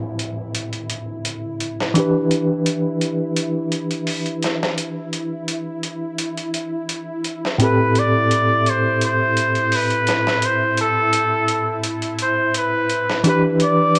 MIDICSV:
0, 0, Header, 1, 6, 480
1, 0, Start_track
1, 0, Key_signature, 0, "minor"
1, 0, Tempo, 705882
1, 1333, Time_signature, 4, 2, 24, 8
1, 9513, End_track
2, 0, Start_track
2, 0, Title_t, "Muted trumpet"
2, 0, Program_c, 0, 59
2, 5187, Note_on_c, 0, 71, 92
2, 5432, Note_on_c, 0, 74, 99
2, 5443, Note_off_c, 0, 71, 0
2, 5912, Note_on_c, 0, 72, 91
2, 5922, Note_off_c, 0, 74, 0
2, 6142, Note_off_c, 0, 72, 0
2, 6154, Note_on_c, 0, 72, 89
2, 6633, Note_on_c, 0, 71, 93
2, 6644, Note_off_c, 0, 72, 0
2, 7110, Note_on_c, 0, 72, 93
2, 7120, Note_off_c, 0, 71, 0
2, 7341, Note_off_c, 0, 72, 0
2, 7351, Note_on_c, 0, 69, 93
2, 8093, Note_off_c, 0, 69, 0
2, 8312, Note_on_c, 0, 72, 81
2, 8526, Note_off_c, 0, 72, 0
2, 8549, Note_on_c, 0, 71, 91
2, 8994, Note_off_c, 0, 71, 0
2, 9031, Note_on_c, 0, 71, 85
2, 9135, Note_off_c, 0, 71, 0
2, 9273, Note_on_c, 0, 74, 99
2, 9513, Note_off_c, 0, 74, 0
2, 9513, End_track
3, 0, Start_track
3, 0, Title_t, "Tine electric piano"
3, 0, Program_c, 1, 4
3, 0, Control_c, 1, 64, 127
3, 0, Note_on_c, 1, 45, 66
3, 0, Note_on_c, 1, 60, 62
3, 0, Note_on_c, 1, 67, 61
3, 0, Note_on_c, 1, 71, 74
3, 1301, Note_off_c, 1, 45, 0
3, 1308, Note_off_c, 1, 60, 0
3, 1314, Note_off_c, 1, 67, 0
3, 1321, Note_off_c, 1, 71, 0
3, 1321, Note_on_c, 1, 52, 69
3, 1333, Note_on_c, 1, 62, 66
3, 1342, Control_c, 1, 64, 0
3, 1345, Note_on_c, 1, 67, 63
3, 1358, Note_on_c, 1, 71, 74
3, 1480, Control_c, 1, 64, 127
3, 5139, Note_off_c, 1, 52, 0
3, 5145, Note_off_c, 1, 62, 0
3, 5151, Note_off_c, 1, 67, 0
3, 5158, Note_off_c, 1, 71, 0
3, 5158, Note_on_c, 1, 45, 67
3, 5169, Note_on_c, 1, 60, 64
3, 5181, Control_c, 1, 64, 0
3, 5181, Note_on_c, 1, 67, 67
3, 5193, Note_on_c, 1, 69, 73
3, 5301, Control_c, 1, 64, 127
3, 8978, Note_off_c, 1, 45, 0
3, 8983, Note_off_c, 1, 60, 0
3, 8989, Note_off_c, 1, 67, 0
3, 8995, Note_off_c, 1, 69, 0
3, 9002, Note_on_c, 1, 52, 73
3, 9014, Note_on_c, 1, 62, 65
3, 9023, Control_c, 1, 64, 0
3, 9025, Note_on_c, 1, 67, 65
3, 9038, Note_on_c, 1, 71, 78
3, 9160, Control_c, 1, 64, 127
3, 9513, Note_off_c, 1, 52, 0
3, 9513, Note_off_c, 1, 62, 0
3, 9513, Note_off_c, 1, 67, 0
3, 9513, Note_off_c, 1, 71, 0
3, 9513, End_track
4, 0, Start_track
4, 0, Title_t, "Synth drone"
4, 0, Program_c, 2, 95
4, 0, Note_on_c, 2, 64, 77
4, 9513, Note_off_c, 2, 64, 0
4, 9513, End_track
5, 0, Start_track
5, 0, Title_t, "Downlifter"
5, 0, Program_c, 3, 103
5, 0, Note_on_c, 3, 60, 61
5, 1332, Note_off_c, 3, 60, 0
5, 9513, End_track
6, 0, Start_track
6, 0, Title_t, "Drums"
6, 130, Note_on_c, 9, 42, 52
6, 198, Note_off_c, 9, 42, 0
6, 371, Note_on_c, 9, 42, 70
6, 439, Note_off_c, 9, 42, 0
6, 495, Note_on_c, 9, 42, 39
6, 563, Note_off_c, 9, 42, 0
6, 610, Note_on_c, 9, 42, 62
6, 678, Note_off_c, 9, 42, 0
6, 849, Note_on_c, 9, 42, 73
6, 917, Note_off_c, 9, 42, 0
6, 1091, Note_on_c, 9, 42, 52
6, 1159, Note_off_c, 9, 42, 0
6, 1227, Note_on_c, 9, 38, 30
6, 1295, Note_off_c, 9, 38, 0
6, 1328, Note_on_c, 9, 42, 78
6, 1396, Note_off_c, 9, 42, 0
6, 1570, Note_on_c, 9, 42, 61
6, 1638, Note_off_c, 9, 42, 0
6, 1809, Note_on_c, 9, 42, 78
6, 1877, Note_off_c, 9, 42, 0
6, 2049, Note_on_c, 9, 42, 57
6, 2117, Note_off_c, 9, 42, 0
6, 2288, Note_on_c, 9, 42, 78
6, 2356, Note_off_c, 9, 42, 0
6, 2528, Note_on_c, 9, 42, 58
6, 2596, Note_off_c, 9, 42, 0
6, 2657, Note_on_c, 9, 42, 33
6, 2725, Note_off_c, 9, 42, 0
6, 2767, Note_on_c, 9, 46, 65
6, 2835, Note_off_c, 9, 46, 0
6, 2896, Note_on_c, 9, 42, 39
6, 2964, Note_off_c, 9, 42, 0
6, 3009, Note_on_c, 9, 42, 53
6, 3021, Note_on_c, 9, 38, 35
6, 3077, Note_off_c, 9, 42, 0
6, 3089, Note_off_c, 9, 38, 0
6, 3148, Note_on_c, 9, 38, 42
6, 3216, Note_off_c, 9, 38, 0
6, 3249, Note_on_c, 9, 42, 78
6, 3317, Note_off_c, 9, 42, 0
6, 3488, Note_on_c, 9, 42, 58
6, 3556, Note_off_c, 9, 42, 0
6, 3726, Note_on_c, 9, 42, 72
6, 3794, Note_off_c, 9, 42, 0
6, 3966, Note_on_c, 9, 42, 54
6, 4034, Note_off_c, 9, 42, 0
6, 4205, Note_on_c, 9, 42, 76
6, 4273, Note_off_c, 9, 42, 0
6, 4335, Note_on_c, 9, 42, 41
6, 4403, Note_off_c, 9, 42, 0
6, 4447, Note_on_c, 9, 42, 59
6, 4515, Note_off_c, 9, 42, 0
6, 4685, Note_on_c, 9, 42, 71
6, 4753, Note_off_c, 9, 42, 0
6, 4926, Note_on_c, 9, 42, 53
6, 4994, Note_off_c, 9, 42, 0
6, 5066, Note_on_c, 9, 38, 31
6, 5134, Note_off_c, 9, 38, 0
6, 5166, Note_on_c, 9, 42, 77
6, 5234, Note_off_c, 9, 42, 0
6, 5408, Note_on_c, 9, 42, 60
6, 5476, Note_off_c, 9, 42, 0
6, 5651, Note_on_c, 9, 42, 72
6, 5719, Note_off_c, 9, 42, 0
6, 5891, Note_on_c, 9, 42, 57
6, 5959, Note_off_c, 9, 42, 0
6, 6129, Note_on_c, 9, 42, 71
6, 6197, Note_off_c, 9, 42, 0
6, 6370, Note_on_c, 9, 42, 64
6, 6438, Note_off_c, 9, 42, 0
6, 6496, Note_on_c, 9, 42, 34
6, 6564, Note_off_c, 9, 42, 0
6, 6609, Note_on_c, 9, 46, 71
6, 6677, Note_off_c, 9, 46, 0
6, 6735, Note_on_c, 9, 42, 38
6, 6803, Note_off_c, 9, 42, 0
6, 6847, Note_on_c, 9, 42, 58
6, 6859, Note_on_c, 9, 38, 37
6, 6915, Note_off_c, 9, 42, 0
6, 6927, Note_off_c, 9, 38, 0
6, 6984, Note_on_c, 9, 38, 41
6, 7052, Note_off_c, 9, 38, 0
6, 7086, Note_on_c, 9, 42, 76
6, 7154, Note_off_c, 9, 42, 0
6, 7326, Note_on_c, 9, 42, 64
6, 7394, Note_off_c, 9, 42, 0
6, 7568, Note_on_c, 9, 42, 81
6, 7636, Note_off_c, 9, 42, 0
6, 7808, Note_on_c, 9, 42, 58
6, 7876, Note_off_c, 9, 42, 0
6, 8048, Note_on_c, 9, 42, 75
6, 8116, Note_off_c, 9, 42, 0
6, 8174, Note_on_c, 9, 42, 41
6, 8242, Note_off_c, 9, 42, 0
6, 8286, Note_on_c, 9, 42, 62
6, 8354, Note_off_c, 9, 42, 0
6, 8530, Note_on_c, 9, 42, 79
6, 8598, Note_off_c, 9, 42, 0
6, 8769, Note_on_c, 9, 42, 53
6, 8837, Note_off_c, 9, 42, 0
6, 8905, Note_on_c, 9, 38, 31
6, 8973, Note_off_c, 9, 38, 0
6, 9005, Note_on_c, 9, 42, 77
6, 9073, Note_off_c, 9, 42, 0
6, 9247, Note_on_c, 9, 42, 63
6, 9315, Note_off_c, 9, 42, 0
6, 9487, Note_on_c, 9, 42, 81
6, 9513, Note_off_c, 9, 42, 0
6, 9513, End_track
0, 0, End_of_file